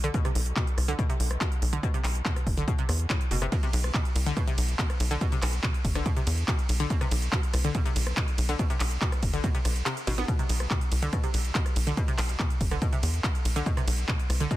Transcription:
Already playing: B1
0.04 D3, closed hi-hat
0.14 B2, kick, closed hi-hat
0.25 C3, cross-stick, closed hi-hat
0.35 B1, open hi-hat
0.46 closed hi-hat
0.56 B2, kick, clap
0.67 closed hi-hat
0.78 C2, cross-stick, open hi-hat
0.88 D3, closed hi-hat
0.99 B2, kick, closed hi-hat
1.09 C3, closed hi-hat
1.20 B1, open hi-hat
1.31 cross-stick, closed hi-hat
1.41 B2, kick, clap, closed hi-hat
1.52 closed hi-hat
1.62 B1, open hi-hat
1.73 D3, closed hi-hat
1.83 B2, kick, cross-stick, closed hi-hat
1.94 C3, closed hi-hat
2.04 B1, clap, open hi-hat
2.15 closed hi-hat
2.25 B2, kick, clap
2.36 cross-stick, closed hi-hat
2.47 F#1, kick, open hi-hat
2.57 D3, closed hi-hat
2.68 B2, kick, closed hi-hat
2.79 C3, closed hi-hat
2.89 E2, cross-stick, open hi-hat
3.00 closed hi-hat
3.10 A2, kick, clap, closed hi-hat
3.21 closed hi-hat
3.31 F#1 B2, open hi-hat
3.42 C3, cross-stick, closed hi-hat
3.52 B2, kick, closed hi-hat, ride
3.63 C3, closed hi-hat
3.73 B1, open hi-hat, ride
3.84 cross-stick, closed hi-hat
3.94 B2, kick, clap, ride
4.05 closed hi-hat
4.15 C2, open hi-hat, ride
4.26 D3, closed hi-hat
4.37 B2, kick, cross-stick, closed hi-hat, ride
4.47 C3, closed hi-hat
4.58 B1, open hi-hat, ride
4.69 closed hi-hat
4.79 B2, kick, clap, closed hi-hat, ride
4.90 cross-stick, closed hi-hat
5.00 B1, open hi-hat, ride
5.11 D3, closed hi-hat
5.21 B2, kick, closed hi-hat, ride
5.32 C3, closed hi-hat
5.42 B1, cross-stick, clap, open hi-hat, ride
5.53 closed hi-hat
5.63 B2, kick, clap, ride
5.74 closed hi-hat
5.85 F#1, kick, open hi-hat, ride
5.95 D3, cross-stick, closed hi-hat
6.06 B2, kick, closed hi-hat, ride
6.17 C3, closed hi-hat
6.27 E2, open hi-hat, ride
6.38 closed hi-hat
6.48 B2, kick, cross-stick, clap, closed hi-hat, ride
6.59 closed hi-hat
6.69 B1, open hi-hat, ride
6.80 D3, closed hi-hat
6.90 B2, kick, closed hi-hat, ride
7.01 C3, cross-stick, closed hi-hat
7.11 B1, open hi-hat, ride
7.22 closed hi-hat
7.33 B2, kick, clap, ride
7.43 closed hi-hat
7.54 C2, cross-stick, open hi-hat, ride
7.64 D3, closed hi-hat
7.75 B2, kick, closed hi-hat, ride
7.86 C3, closed hi-hat
7.96 B1, open hi-hat, ride
8.07 cross-stick, closed hi-hat
8.17 B2, kick, clap, closed hi-hat, ride
8.28 closed hi-hat
8.38 B1, open hi-hat, ride
8.49 D3, closed hi-hat
8.59 B2, kick, cross-stick, closed hi-hat, ride
8.70 C3, closed hi-hat
8.80 B1, clap, open hi-hat, ride
8.91 closed hi-hat
9.02 B2, kick, clap, closed hi-hat, ride
9.12 cross-stick, closed hi-hat
9.23 F#1, kick, open hi-hat, ride
9.33 D3, closed hi-hat
9.44 B2, kick, closed hi-hat, ride
9.54 C3, closed hi-hat
9.65 B1, cross-stick, open hi-hat, ride
9.76 closed hi-hat
9.86 C3, clap, closed hi-hat, ride
9.97 closed hi-hat
10.07 A1 B2, snare, open hi-hat, ride
10.18 B3, snare, closed hi-hat
10.28 B2, kick, closed hi-hat, ride
10.39 C3, closed hi-hat
10.49 B1, open hi-hat, ride
10.60 cross-stick, closed hi-hat
10.71 B2, kick, clap, ride
10.81 closed hi-hat
10.92 C2, open hi-hat, ride
11.02 D3, closed hi-hat
11.13 B2, kick, cross-stick, closed hi-hat, ride
11.23 C3, closed hi-hat
11.34 B1, open hi-hat, ride
11.45 closed hi-hat
11.55 B2, kick, clap, closed hi-hat, ride
11.66 cross-stick, closed hi-hat
11.76 B1, open hi-hat, ride
11.87 D3, closed hi-hat
11.97 B2, kick, closed hi-hat, ride
12.08 C3, closed hi-hat
12.18 B1, cross-stick, clap, open hi-hat, ride
12.29 closed hi-hat
12.39 B2, kick, clap, ride
12.50 closed hi-hat
12.61 F#1, kick, open hi-hat, ride
12.71 D3, cross-stick, closed hi-hat
12.82 B2, kick, closed hi-hat, ride
12.93 C3, closed hi-hat
13.03 E2, open hi-hat, ride
13.14 closed hi-hat
13.24 B2, kick, cross-stick, clap, closed hi-hat, ride
13.35 closed hi-hat
13.45 B1, open hi-hat, ride
13.56 D3, closed hi-hat
13.66 B2, kick, closed hi-hat, ride
13.77 C3, cross-stick, closed hi-hat
13.87 B1, open hi-hat, ride
13.98 closed hi-hat
14.09 B2, kick, clap, ride
14.19 closed hi-hat
14.30 C2, cross-stick, open hi-hat, ride
14.40 D3, closed hi-hat
14.51 B2, kick, closed hi-hat, ride

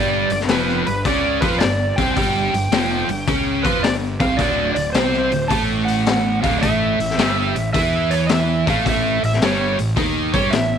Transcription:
Already playing: G1 G2 G3 D5
0.30 G1 G2 D5, open hi-hat
0.40 snare
0.49 F1 F2 F3 B4, snare, open hi-hat
0.68 snare
0.86 G1 G2 B4, open hi-hat
1.05 C#2 C#3 C#4 D5, kick, open hi-hat
1.41 F2 F3 F4 B4, kick, open hi-hat
1.58 G1 G2 D5, snare, open hi-hat
1.96 C2 C3 C4 G5, kick, open hi-hat
2.14 G1 G2 G3 G5, kick, open hi-hat
2.53 G1 G2, open hi-hat
2.72 F1 F2 F3, snare, open hi-hat
3.09 G1 G2, open hi-hat
3.27 C#2 C#3 C#4, kick, open hi-hat
3.64 F2 F3 F4 B4, kick, open hi-hat
3.83 G1 G2 D5, snare, open hi-hat
4.20 C2 C3 C4 F5, kick, open hi-hat
4.37 D1 D2 D3 D5, kick, open hi-hat
4.74 D1 D2 D5, open hi-hat
4.93 C2 C3 C4 C5, snare, open hi-hat
5.13 snare
5.31 D1 D2, open hi-hat
5.48 A1 A2 A3 A5, kick, open hi-hat
5.85 F#5, open hi-hat
6.06 snare, open hi-hat
6.42 D1 D2 D3 F5, kick, open hi-hat
6.61 A1 A2 A3 E5, kick, open hi-hat
6.99 A1 A2, open hi-hat
7.10 snare
7.18 G1 G2 G3, snare, open hi-hat
7.55 A1 A2, open hi-hat
7.73 E2 E3 E4 E5, kick, open hi-hat
8.10 C#5, open hi-hat
8.26 D#5, snare, open hi-hat
8.32 E5
8.66 A1 A2 A3 F5, kick, open hi-hat
8.85 A1 A2 A3, kick, open hi-hat
8.89 E5
9.23 A1 A2 E5, open hi-hat
9.33 snare
9.41 G1 G2 G3 C#5, snare, open hi-hat
9.78 A1 A2, open hi-hat
9.96 D#2 D#3 D#4, kick, open hi-hat
10.33 G2 G3 G4 C#5, kick, open hi-hat
10.51 A1 A2 E5, snare, open hi-hat

